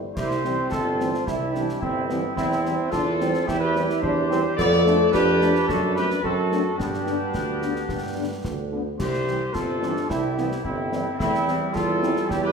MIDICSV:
0, 0, Header, 1, 8, 480
1, 0, Start_track
1, 0, Key_signature, 0, "major"
1, 0, Tempo, 551978
1, 142, Time_signature, 2, 2, 24, 8
1, 10887, End_track
2, 0, Start_track
2, 0, Title_t, "Trumpet section"
2, 0, Program_c, 0, 61
2, 129, Note_on_c, 0, 72, 100
2, 582, Note_off_c, 0, 72, 0
2, 614, Note_on_c, 0, 69, 99
2, 1064, Note_off_c, 0, 69, 0
2, 1097, Note_on_c, 0, 67, 82
2, 1578, Note_on_c, 0, 64, 90
2, 1579, Note_off_c, 0, 67, 0
2, 2026, Note_off_c, 0, 64, 0
2, 2053, Note_on_c, 0, 64, 97
2, 2504, Note_off_c, 0, 64, 0
2, 2534, Note_on_c, 0, 69, 111
2, 3012, Note_on_c, 0, 67, 111
2, 3018, Note_off_c, 0, 69, 0
2, 3130, Note_on_c, 0, 71, 103
2, 3137, Note_off_c, 0, 67, 0
2, 3470, Note_off_c, 0, 71, 0
2, 3491, Note_on_c, 0, 72, 101
2, 3971, Note_on_c, 0, 74, 127
2, 3977, Note_off_c, 0, 72, 0
2, 4423, Note_off_c, 0, 74, 0
2, 4452, Note_on_c, 0, 71, 115
2, 4903, Note_off_c, 0, 71, 0
2, 4937, Note_on_c, 0, 69, 110
2, 5180, Note_off_c, 0, 69, 0
2, 5182, Note_on_c, 0, 71, 109
2, 5405, Note_off_c, 0, 71, 0
2, 5423, Note_on_c, 0, 69, 102
2, 5869, Note_off_c, 0, 69, 0
2, 5900, Note_on_c, 0, 67, 102
2, 7580, Note_off_c, 0, 67, 0
2, 7819, Note_on_c, 0, 72, 104
2, 8266, Note_off_c, 0, 72, 0
2, 8295, Note_on_c, 0, 69, 100
2, 8776, Note_on_c, 0, 67, 90
2, 8777, Note_off_c, 0, 69, 0
2, 9247, Note_on_c, 0, 64, 96
2, 9257, Note_off_c, 0, 67, 0
2, 9698, Note_off_c, 0, 64, 0
2, 9730, Note_on_c, 0, 64, 110
2, 10180, Note_off_c, 0, 64, 0
2, 10210, Note_on_c, 0, 69, 106
2, 10685, Note_on_c, 0, 67, 104
2, 10693, Note_off_c, 0, 69, 0
2, 10811, Note_off_c, 0, 67, 0
2, 10817, Note_on_c, 0, 71, 108
2, 10887, Note_off_c, 0, 71, 0
2, 10887, End_track
3, 0, Start_track
3, 0, Title_t, "Woodwind section"
3, 0, Program_c, 1, 71
3, 133, Note_on_c, 1, 67, 91
3, 584, Note_off_c, 1, 67, 0
3, 610, Note_on_c, 1, 65, 87
3, 1096, Note_off_c, 1, 65, 0
3, 1096, Note_on_c, 1, 64, 78
3, 1574, Note_on_c, 1, 60, 76
3, 1579, Note_off_c, 1, 64, 0
3, 2024, Note_off_c, 1, 60, 0
3, 2055, Note_on_c, 1, 60, 89
3, 2505, Note_off_c, 1, 60, 0
3, 2530, Note_on_c, 1, 65, 105
3, 2982, Note_off_c, 1, 65, 0
3, 3018, Note_on_c, 1, 64, 93
3, 3140, Note_off_c, 1, 64, 0
3, 3141, Note_on_c, 1, 67, 94
3, 3477, Note_off_c, 1, 67, 0
3, 3496, Note_on_c, 1, 67, 92
3, 3946, Note_off_c, 1, 67, 0
3, 3978, Note_on_c, 1, 69, 118
3, 4460, Note_off_c, 1, 69, 0
3, 4462, Note_on_c, 1, 67, 121
3, 4909, Note_off_c, 1, 67, 0
3, 4940, Note_on_c, 1, 66, 91
3, 5049, Note_off_c, 1, 66, 0
3, 5185, Note_on_c, 1, 67, 91
3, 5293, Note_off_c, 1, 67, 0
3, 5420, Note_on_c, 1, 66, 89
3, 5868, Note_off_c, 1, 66, 0
3, 5896, Note_on_c, 1, 62, 89
3, 7544, Note_off_c, 1, 62, 0
3, 7818, Note_on_c, 1, 67, 91
3, 8266, Note_off_c, 1, 67, 0
3, 8286, Note_on_c, 1, 65, 77
3, 8739, Note_off_c, 1, 65, 0
3, 8771, Note_on_c, 1, 64, 74
3, 9221, Note_off_c, 1, 64, 0
3, 9254, Note_on_c, 1, 60, 85
3, 9717, Note_off_c, 1, 60, 0
3, 9728, Note_on_c, 1, 60, 93
3, 10179, Note_off_c, 1, 60, 0
3, 10215, Note_on_c, 1, 65, 101
3, 10662, Note_off_c, 1, 65, 0
3, 10694, Note_on_c, 1, 64, 84
3, 10749, Note_off_c, 1, 64, 0
3, 10818, Note_on_c, 1, 67, 98
3, 10887, Note_off_c, 1, 67, 0
3, 10887, End_track
4, 0, Start_track
4, 0, Title_t, "Trombone section"
4, 0, Program_c, 2, 61
4, 140, Note_on_c, 2, 64, 76
4, 364, Note_off_c, 2, 64, 0
4, 386, Note_on_c, 2, 60, 70
4, 1069, Note_off_c, 2, 60, 0
4, 1109, Note_on_c, 2, 64, 73
4, 1329, Note_off_c, 2, 64, 0
4, 1348, Note_on_c, 2, 62, 73
4, 1579, Note_on_c, 2, 60, 61
4, 1585, Note_off_c, 2, 62, 0
4, 1804, Note_off_c, 2, 60, 0
4, 1810, Note_on_c, 2, 59, 63
4, 2039, Note_off_c, 2, 59, 0
4, 2057, Note_on_c, 2, 60, 81
4, 2506, Note_off_c, 2, 60, 0
4, 2541, Note_on_c, 2, 62, 76
4, 2650, Note_off_c, 2, 62, 0
4, 2779, Note_on_c, 2, 60, 84
4, 3004, Note_off_c, 2, 60, 0
4, 3012, Note_on_c, 2, 64, 99
4, 3495, Note_on_c, 2, 62, 88
4, 3497, Note_off_c, 2, 64, 0
4, 3739, Note_off_c, 2, 62, 0
4, 3740, Note_on_c, 2, 60, 88
4, 3849, Note_off_c, 2, 60, 0
4, 3984, Note_on_c, 2, 59, 93
4, 4207, Note_off_c, 2, 59, 0
4, 4219, Note_on_c, 2, 57, 85
4, 4444, Note_off_c, 2, 57, 0
4, 4457, Note_on_c, 2, 62, 91
4, 5418, Note_on_c, 2, 60, 75
4, 5420, Note_off_c, 2, 62, 0
4, 5527, Note_off_c, 2, 60, 0
4, 5659, Note_on_c, 2, 57, 62
4, 5768, Note_off_c, 2, 57, 0
4, 5905, Note_on_c, 2, 59, 76
4, 7548, Note_off_c, 2, 59, 0
4, 8302, Note_on_c, 2, 60, 67
4, 8524, Note_off_c, 2, 60, 0
4, 8530, Note_on_c, 2, 62, 79
4, 8758, Note_off_c, 2, 62, 0
4, 8783, Note_on_c, 2, 64, 76
4, 9005, Note_off_c, 2, 64, 0
4, 9020, Note_on_c, 2, 59, 69
4, 9127, Note_off_c, 2, 59, 0
4, 9263, Note_on_c, 2, 60, 58
4, 9370, Note_off_c, 2, 60, 0
4, 9501, Note_on_c, 2, 55, 66
4, 9608, Note_off_c, 2, 55, 0
4, 9738, Note_on_c, 2, 57, 76
4, 9846, Note_off_c, 2, 57, 0
4, 9979, Note_on_c, 2, 55, 76
4, 10887, Note_off_c, 2, 55, 0
4, 10887, End_track
5, 0, Start_track
5, 0, Title_t, "French horn section"
5, 0, Program_c, 3, 60
5, 389, Note_on_c, 3, 52, 53
5, 390, Note_on_c, 3, 55, 58
5, 392, Note_on_c, 3, 60, 54
5, 474, Note_off_c, 3, 52, 0
5, 475, Note_off_c, 3, 55, 0
5, 476, Note_off_c, 3, 60, 0
5, 871, Note_on_c, 3, 52, 61
5, 872, Note_on_c, 3, 55, 60
5, 872, Note_on_c, 3, 60, 60
5, 955, Note_off_c, 3, 52, 0
5, 956, Note_off_c, 3, 55, 0
5, 956, Note_off_c, 3, 60, 0
5, 1350, Note_on_c, 3, 60, 62
5, 1351, Note_on_c, 3, 52, 58
5, 1353, Note_on_c, 3, 55, 55
5, 1435, Note_off_c, 3, 60, 0
5, 1436, Note_off_c, 3, 52, 0
5, 1437, Note_off_c, 3, 55, 0
5, 1833, Note_on_c, 3, 52, 67
5, 1836, Note_on_c, 3, 60, 70
5, 1837, Note_on_c, 3, 55, 66
5, 1917, Note_off_c, 3, 52, 0
5, 1919, Note_off_c, 3, 60, 0
5, 1920, Note_off_c, 3, 55, 0
5, 2308, Note_on_c, 3, 55, 60
5, 2309, Note_on_c, 3, 60, 59
5, 2311, Note_on_c, 3, 52, 60
5, 2393, Note_off_c, 3, 55, 0
5, 2394, Note_off_c, 3, 60, 0
5, 2395, Note_off_c, 3, 52, 0
5, 2791, Note_on_c, 3, 55, 77
5, 2792, Note_on_c, 3, 52, 74
5, 2794, Note_on_c, 3, 60, 67
5, 2875, Note_off_c, 3, 55, 0
5, 2877, Note_off_c, 3, 52, 0
5, 2878, Note_off_c, 3, 60, 0
5, 3265, Note_on_c, 3, 55, 64
5, 3268, Note_on_c, 3, 52, 69
5, 3268, Note_on_c, 3, 60, 66
5, 3351, Note_off_c, 3, 55, 0
5, 3353, Note_off_c, 3, 52, 0
5, 3353, Note_off_c, 3, 60, 0
5, 3748, Note_on_c, 3, 52, 74
5, 3748, Note_on_c, 3, 55, 76
5, 3751, Note_on_c, 3, 60, 82
5, 3833, Note_off_c, 3, 52, 0
5, 3833, Note_off_c, 3, 55, 0
5, 3835, Note_off_c, 3, 60, 0
5, 4223, Note_on_c, 3, 57, 73
5, 4225, Note_off_c, 3, 57, 0
5, 4225, Note_on_c, 3, 57, 71
5, 4225, Note_on_c, 3, 62, 64
5, 4311, Note_off_c, 3, 57, 0
5, 4311, Note_off_c, 3, 62, 0
5, 4711, Note_on_c, 3, 57, 76
5, 4713, Note_on_c, 3, 62, 77
5, 4796, Note_off_c, 3, 57, 0
5, 4797, Note_off_c, 3, 62, 0
5, 5190, Note_on_c, 3, 62, 69
5, 5191, Note_on_c, 3, 57, 70
5, 5191, Note_on_c, 3, 60, 66
5, 5275, Note_off_c, 3, 57, 0
5, 5275, Note_off_c, 3, 62, 0
5, 5276, Note_off_c, 3, 60, 0
5, 5669, Note_on_c, 3, 62, 64
5, 5670, Note_on_c, 3, 60, 68
5, 5671, Note_on_c, 3, 57, 62
5, 5754, Note_off_c, 3, 62, 0
5, 5755, Note_off_c, 3, 57, 0
5, 5755, Note_off_c, 3, 60, 0
5, 6147, Note_on_c, 3, 50, 58
5, 6148, Note_on_c, 3, 62, 51
5, 6151, Note_on_c, 3, 59, 52
5, 6232, Note_off_c, 3, 50, 0
5, 6233, Note_off_c, 3, 62, 0
5, 6235, Note_off_c, 3, 59, 0
5, 6627, Note_on_c, 3, 50, 62
5, 6628, Note_on_c, 3, 62, 59
5, 6629, Note_on_c, 3, 59, 63
5, 6712, Note_off_c, 3, 50, 0
5, 6713, Note_off_c, 3, 62, 0
5, 6714, Note_off_c, 3, 59, 0
5, 7101, Note_on_c, 3, 59, 51
5, 7102, Note_on_c, 3, 62, 52
5, 7106, Note_on_c, 3, 50, 50
5, 7188, Note_off_c, 3, 59, 0
5, 7188, Note_off_c, 3, 62, 0
5, 7191, Note_off_c, 3, 50, 0
5, 7583, Note_on_c, 3, 50, 58
5, 7585, Note_on_c, 3, 62, 52
5, 7586, Note_on_c, 3, 59, 61
5, 7669, Note_off_c, 3, 50, 0
5, 7670, Note_off_c, 3, 62, 0
5, 7671, Note_off_c, 3, 59, 0
5, 8063, Note_on_c, 3, 55, 58
5, 8063, Note_on_c, 3, 60, 49
5, 8065, Note_on_c, 3, 52, 55
5, 8149, Note_off_c, 3, 55, 0
5, 8149, Note_off_c, 3, 60, 0
5, 8151, Note_off_c, 3, 52, 0
5, 8543, Note_on_c, 3, 60, 61
5, 8546, Note_on_c, 3, 52, 62
5, 8546, Note_on_c, 3, 55, 65
5, 8629, Note_off_c, 3, 60, 0
5, 8631, Note_off_c, 3, 52, 0
5, 8631, Note_off_c, 3, 55, 0
5, 9022, Note_on_c, 3, 60, 55
5, 9024, Note_on_c, 3, 52, 52
5, 9024, Note_on_c, 3, 55, 59
5, 9108, Note_off_c, 3, 60, 0
5, 9109, Note_off_c, 3, 52, 0
5, 9109, Note_off_c, 3, 55, 0
5, 9494, Note_on_c, 3, 52, 70
5, 9495, Note_on_c, 3, 60, 68
5, 9496, Note_on_c, 3, 55, 69
5, 9582, Note_off_c, 3, 52, 0
5, 9582, Note_off_c, 3, 60, 0
5, 9583, Note_off_c, 3, 55, 0
5, 9977, Note_on_c, 3, 52, 61
5, 9977, Note_on_c, 3, 55, 57
5, 9978, Note_on_c, 3, 60, 58
5, 10063, Note_off_c, 3, 52, 0
5, 10063, Note_off_c, 3, 55, 0
5, 10064, Note_off_c, 3, 60, 0
5, 10459, Note_on_c, 3, 55, 77
5, 10459, Note_on_c, 3, 60, 68
5, 10460, Note_on_c, 3, 52, 71
5, 10545, Note_off_c, 3, 55, 0
5, 10545, Note_off_c, 3, 60, 0
5, 10546, Note_off_c, 3, 52, 0
5, 10887, End_track
6, 0, Start_track
6, 0, Title_t, "Euphonium"
6, 0, Program_c, 4, 58
6, 0, Note_on_c, 4, 55, 47
6, 142, Note_off_c, 4, 55, 0
6, 10887, End_track
7, 0, Start_track
7, 0, Title_t, "Tuba"
7, 0, Program_c, 5, 58
7, 138, Note_on_c, 5, 36, 69
7, 540, Note_off_c, 5, 36, 0
7, 618, Note_on_c, 5, 31, 72
7, 1020, Note_off_c, 5, 31, 0
7, 1106, Note_on_c, 5, 36, 76
7, 1504, Note_off_c, 5, 36, 0
7, 1575, Note_on_c, 5, 31, 71
7, 1979, Note_off_c, 5, 31, 0
7, 2056, Note_on_c, 5, 40, 76
7, 2459, Note_off_c, 5, 40, 0
7, 2540, Note_on_c, 5, 40, 80
7, 2941, Note_off_c, 5, 40, 0
7, 3021, Note_on_c, 5, 40, 84
7, 3422, Note_off_c, 5, 40, 0
7, 3499, Note_on_c, 5, 40, 91
7, 3901, Note_off_c, 5, 40, 0
7, 3983, Note_on_c, 5, 41, 102
7, 4383, Note_off_c, 5, 41, 0
7, 4463, Note_on_c, 5, 41, 92
7, 4822, Note_off_c, 5, 41, 0
7, 4942, Note_on_c, 5, 42, 81
7, 5342, Note_off_c, 5, 42, 0
7, 5421, Note_on_c, 5, 42, 90
7, 5821, Note_off_c, 5, 42, 0
7, 5903, Note_on_c, 5, 43, 75
7, 6302, Note_off_c, 5, 43, 0
7, 6380, Note_on_c, 5, 38, 69
7, 6781, Note_off_c, 5, 38, 0
7, 6862, Note_on_c, 5, 43, 68
7, 7261, Note_off_c, 5, 43, 0
7, 7341, Note_on_c, 5, 38, 69
7, 7741, Note_off_c, 5, 38, 0
7, 7820, Note_on_c, 5, 36, 74
7, 8220, Note_off_c, 5, 36, 0
7, 8301, Note_on_c, 5, 31, 64
7, 8700, Note_off_c, 5, 31, 0
7, 8777, Note_on_c, 5, 36, 75
7, 9178, Note_off_c, 5, 36, 0
7, 9254, Note_on_c, 5, 31, 78
7, 9656, Note_off_c, 5, 31, 0
7, 9733, Note_on_c, 5, 40, 77
7, 10135, Note_off_c, 5, 40, 0
7, 10214, Note_on_c, 5, 40, 85
7, 10615, Note_off_c, 5, 40, 0
7, 10685, Note_on_c, 5, 40, 92
7, 10887, Note_off_c, 5, 40, 0
7, 10887, End_track
8, 0, Start_track
8, 0, Title_t, "Drums"
8, 146, Note_on_c, 9, 35, 81
8, 146, Note_on_c, 9, 38, 73
8, 146, Note_on_c, 9, 49, 45
8, 233, Note_off_c, 9, 35, 0
8, 233, Note_off_c, 9, 38, 0
8, 233, Note_off_c, 9, 49, 0
8, 268, Note_on_c, 9, 38, 48
8, 355, Note_off_c, 9, 38, 0
8, 387, Note_on_c, 9, 38, 43
8, 474, Note_off_c, 9, 38, 0
8, 626, Note_on_c, 9, 35, 72
8, 626, Note_on_c, 9, 38, 71
8, 713, Note_off_c, 9, 35, 0
8, 713, Note_off_c, 9, 38, 0
8, 871, Note_on_c, 9, 38, 61
8, 958, Note_off_c, 9, 38, 0
8, 993, Note_on_c, 9, 38, 43
8, 1080, Note_off_c, 9, 38, 0
8, 1108, Note_on_c, 9, 35, 76
8, 1108, Note_on_c, 9, 38, 69
8, 1195, Note_off_c, 9, 35, 0
8, 1195, Note_off_c, 9, 38, 0
8, 1347, Note_on_c, 9, 38, 46
8, 1434, Note_off_c, 9, 38, 0
8, 1468, Note_on_c, 9, 38, 52
8, 1555, Note_off_c, 9, 38, 0
8, 1586, Note_on_c, 9, 35, 66
8, 1673, Note_off_c, 9, 35, 0
8, 1824, Note_on_c, 9, 38, 53
8, 1911, Note_off_c, 9, 38, 0
8, 2064, Note_on_c, 9, 35, 84
8, 2064, Note_on_c, 9, 38, 77
8, 2151, Note_off_c, 9, 35, 0
8, 2151, Note_off_c, 9, 38, 0
8, 2188, Note_on_c, 9, 38, 47
8, 2275, Note_off_c, 9, 38, 0
8, 2309, Note_on_c, 9, 38, 45
8, 2396, Note_off_c, 9, 38, 0
8, 2545, Note_on_c, 9, 35, 72
8, 2545, Note_on_c, 9, 38, 69
8, 2632, Note_off_c, 9, 35, 0
8, 2632, Note_off_c, 9, 38, 0
8, 2787, Note_on_c, 9, 38, 56
8, 2874, Note_off_c, 9, 38, 0
8, 2903, Note_on_c, 9, 38, 52
8, 2990, Note_off_c, 9, 38, 0
8, 3028, Note_on_c, 9, 35, 79
8, 3028, Note_on_c, 9, 38, 78
8, 3115, Note_off_c, 9, 35, 0
8, 3115, Note_off_c, 9, 38, 0
8, 3266, Note_on_c, 9, 38, 54
8, 3353, Note_off_c, 9, 38, 0
8, 3388, Note_on_c, 9, 38, 49
8, 3475, Note_off_c, 9, 38, 0
8, 3508, Note_on_c, 9, 35, 78
8, 3595, Note_off_c, 9, 35, 0
8, 3752, Note_on_c, 9, 38, 55
8, 3839, Note_off_c, 9, 38, 0
8, 3991, Note_on_c, 9, 35, 84
8, 3991, Note_on_c, 9, 38, 76
8, 3991, Note_on_c, 9, 49, 34
8, 4078, Note_off_c, 9, 35, 0
8, 4078, Note_off_c, 9, 38, 0
8, 4078, Note_off_c, 9, 49, 0
8, 4110, Note_on_c, 9, 38, 48
8, 4197, Note_off_c, 9, 38, 0
8, 4233, Note_on_c, 9, 38, 52
8, 4320, Note_off_c, 9, 38, 0
8, 4469, Note_on_c, 9, 35, 69
8, 4469, Note_on_c, 9, 38, 78
8, 4556, Note_off_c, 9, 35, 0
8, 4556, Note_off_c, 9, 38, 0
8, 4707, Note_on_c, 9, 38, 61
8, 4794, Note_off_c, 9, 38, 0
8, 4828, Note_on_c, 9, 38, 46
8, 4915, Note_off_c, 9, 38, 0
8, 4950, Note_on_c, 9, 35, 84
8, 4950, Note_on_c, 9, 38, 73
8, 5037, Note_off_c, 9, 35, 0
8, 5037, Note_off_c, 9, 38, 0
8, 5186, Note_on_c, 9, 38, 50
8, 5273, Note_off_c, 9, 38, 0
8, 5307, Note_on_c, 9, 38, 55
8, 5394, Note_off_c, 9, 38, 0
8, 5429, Note_on_c, 9, 35, 66
8, 5516, Note_off_c, 9, 35, 0
8, 5669, Note_on_c, 9, 38, 53
8, 5756, Note_off_c, 9, 38, 0
8, 5910, Note_on_c, 9, 35, 82
8, 5910, Note_on_c, 9, 38, 74
8, 5997, Note_off_c, 9, 35, 0
8, 5997, Note_off_c, 9, 38, 0
8, 6030, Note_on_c, 9, 38, 46
8, 6117, Note_off_c, 9, 38, 0
8, 6145, Note_on_c, 9, 38, 44
8, 6232, Note_off_c, 9, 38, 0
8, 6386, Note_on_c, 9, 35, 70
8, 6386, Note_on_c, 9, 38, 73
8, 6473, Note_off_c, 9, 35, 0
8, 6473, Note_off_c, 9, 38, 0
8, 6625, Note_on_c, 9, 38, 57
8, 6712, Note_off_c, 9, 38, 0
8, 6745, Note_on_c, 9, 38, 44
8, 6832, Note_off_c, 9, 38, 0
8, 6861, Note_on_c, 9, 35, 79
8, 6861, Note_on_c, 9, 38, 61
8, 6948, Note_off_c, 9, 35, 0
8, 6948, Note_off_c, 9, 38, 0
8, 7343, Note_on_c, 9, 35, 71
8, 7343, Note_on_c, 9, 38, 66
8, 7430, Note_off_c, 9, 35, 0
8, 7430, Note_off_c, 9, 38, 0
8, 7825, Note_on_c, 9, 35, 83
8, 7825, Note_on_c, 9, 38, 71
8, 7825, Note_on_c, 9, 49, 48
8, 7912, Note_off_c, 9, 35, 0
8, 7912, Note_off_c, 9, 38, 0
8, 7912, Note_off_c, 9, 49, 0
8, 7943, Note_on_c, 9, 38, 43
8, 8030, Note_off_c, 9, 38, 0
8, 8064, Note_on_c, 9, 38, 46
8, 8151, Note_off_c, 9, 38, 0
8, 8305, Note_on_c, 9, 35, 73
8, 8305, Note_on_c, 9, 38, 74
8, 8391, Note_off_c, 9, 35, 0
8, 8391, Note_off_c, 9, 38, 0
8, 8544, Note_on_c, 9, 38, 54
8, 8631, Note_off_c, 9, 38, 0
8, 8665, Note_on_c, 9, 38, 46
8, 8752, Note_off_c, 9, 38, 0
8, 8784, Note_on_c, 9, 35, 76
8, 8784, Note_on_c, 9, 38, 80
8, 8871, Note_off_c, 9, 35, 0
8, 8871, Note_off_c, 9, 38, 0
8, 9024, Note_on_c, 9, 38, 44
8, 9111, Note_off_c, 9, 38, 0
8, 9144, Note_on_c, 9, 38, 51
8, 9231, Note_off_c, 9, 38, 0
8, 9259, Note_on_c, 9, 35, 72
8, 9346, Note_off_c, 9, 35, 0
8, 9500, Note_on_c, 9, 38, 59
8, 9587, Note_off_c, 9, 38, 0
8, 9740, Note_on_c, 9, 35, 87
8, 9740, Note_on_c, 9, 38, 72
8, 9827, Note_off_c, 9, 35, 0
8, 9827, Note_off_c, 9, 38, 0
8, 9864, Note_on_c, 9, 38, 47
8, 9951, Note_off_c, 9, 38, 0
8, 9981, Note_on_c, 9, 38, 49
8, 10068, Note_off_c, 9, 38, 0
8, 10223, Note_on_c, 9, 35, 72
8, 10223, Note_on_c, 9, 38, 68
8, 10310, Note_off_c, 9, 35, 0
8, 10310, Note_off_c, 9, 38, 0
8, 10459, Note_on_c, 9, 38, 55
8, 10546, Note_off_c, 9, 38, 0
8, 10577, Note_on_c, 9, 38, 44
8, 10664, Note_off_c, 9, 38, 0
8, 10701, Note_on_c, 9, 35, 77
8, 10701, Note_on_c, 9, 38, 76
8, 10788, Note_off_c, 9, 35, 0
8, 10788, Note_off_c, 9, 38, 0
8, 10887, End_track
0, 0, End_of_file